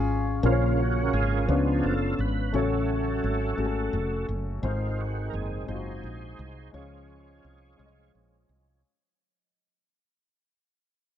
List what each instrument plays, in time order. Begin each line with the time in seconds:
Already playing: fretless electric bass G#1, grand piano C#3 C#4 F4 G#4
0.43 fretless electric bass A#1, grand piano A#2 A#3 C#4 F4 C5, tonewheel organ C#3 A#3 C#4 F4
0.52 grand piano C#5
0.79 tonewheel organ F#4
1.13 fretless electric bass G#1, tonewheel organ F4 G#4
1.47 fretless electric bass C#2, grand piano C#3 B3 D4 F4 C#5, tonewheel organ F3 B3 D4
1.84 fretless electric bass F#1, tonewheel organ A4
2.19 fretless electric bass G#1, tonewheel organ B4
2.53 fretless electric bass A1, grand piano C#3 A3 C#4 F#4 C#5, tonewheel organ F#3 A3 C#4 F#4
2.58 tonewheel organ A4
3.24 fretless electric bass G#1
3.57 fretless electric bass G#1, grand piano A3 C#4 F#4 G#4
3.66 grand piano A4
3.93 fretless electric bass F1
4.29 fretless electric bass F#1
4.62 fretless electric bass G#1, grand piano G#2 G#3 C4 D#4 C5, tonewheel organ D#3 G#3 C4 F4
5.01 tonewheel organ F#4
5.30 fretless electric bass F#1, tonewheel organ A#4
5.34 tonewheel organ G#4
5.66 fretless electric bass F#1, grand piano G#3 C4 D#4 F4, tonewheel organ C5
5.71 tonewheel organ D#4 G#4
5.75 grand piano F#4
6.03 fretless electric bass A#1
6.39 fretless electric bass C2
6.71 fretless electric bass C#2, grand piano F3 G#3 C#4 F4 C#5, tonewheel organ C#5
6.76 tonewheel organ F3 G#3 C#4 F4 G#4
7.44 fretless electric bass C2
7.77 fretless electric bass C2, grand piano G#3 C#4 F4 C#5
7.86 grand piano D#5
8.15 fretless electric bass A#1
8.49 fretless electric bass C2, tonewheel organ F3 G#3 C#4